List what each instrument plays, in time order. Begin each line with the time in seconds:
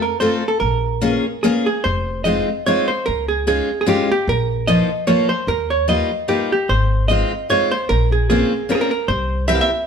0.02 hollow-body jazz guitar A#4
0.20 steel-string acoustic guitar A3 C4 F4 A4, hollow-body jazz guitar C5
0.48 hollow-body jazz guitar A4
0.60 upright bass A#1, hollow-body jazz guitar A#4
1.01 steel-string acoustic guitar A#3 C#4 F4 G#4
1.43 steel-string acoustic guitar A#3 C#4 F4 G#4, hollow-body jazz guitar G#4
1.66 hollow-body jazz guitar G#4
1.84 upright bass F1, hollow-body jazz guitar C5
2.24 steel-string acoustic guitar G#3 C4 D#4 F4, hollow-body jazz guitar D#5
2.66 steel-string acoustic guitar G#3 C4 D#4 F4, hollow-body jazz guitar C#5
2.88 hollow-body jazz guitar C5
3.06 upright bass C#2, hollow-body jazz guitar A#4
3.28 hollow-body jazz guitar G#4
3.47 steel-string acoustic guitar G#3 C#4 D#4 F4, hollow-body jazz guitar G#4
3.81 hollow-body jazz guitar G#4
3.86 steel-string acoustic guitar G#3 C#4 D#4 F4, hollow-body jazz guitar G4
4.12 hollow-body jazz guitar G4
4.28 upright bass A#1, hollow-body jazz guitar A#4
4.67 steel-string acoustic guitar F3 A#3 D#4 F4, hollow-body jazz guitar D#5
5.07 steel-string acoustic guitar F3 A#3 D#4 F4, hollow-body jazz guitar C#5
5.29 hollow-body jazz guitar C5
5.47 upright bass D#2, hollow-body jazz guitar A#4
5.70 hollow-body jazz guitar C#5
5.88 steel-string acoustic guitar G3 A#3 D#4 F4, hollow-body jazz guitar D#5
6.28 steel-string acoustic guitar G3 A#3 D#4 F4, hollow-body jazz guitar G4
6.52 hollow-body jazz guitar G4
6.69 upright bass G#1, hollow-body jazz guitar C5
7.08 steel-string acoustic guitar G#3 C4 D#4 F4, hollow-body jazz guitar D#5
7.50 steel-string acoustic guitar G#3 C4 D#4 F4, hollow-body jazz guitar C#5
7.71 hollow-body jazz guitar C5
7.89 upright bass A#1, hollow-body jazz guitar A#4
8.12 hollow-body jazz guitar G#4
8.30 steel-string acoustic guitar A#3 C4 C#4 F4, hollow-body jazz guitar G#4
8.69 steel-string acoustic guitar A#3 C4 C#4 F4, hollow-body jazz guitar A#4
8.75 hollow-body jazz guitar G#4
8.81 hollow-body jazz guitar A#4
8.91 hollow-body jazz guitar A#4
9.08 upright bass C2, hollow-body jazz guitar C5
9.48 steel-string acoustic guitar A#3 C4 E4 G4, hollow-body jazz guitar E5
9.55 hollow-body jazz guitar F5
9.61 hollow-body jazz guitar E5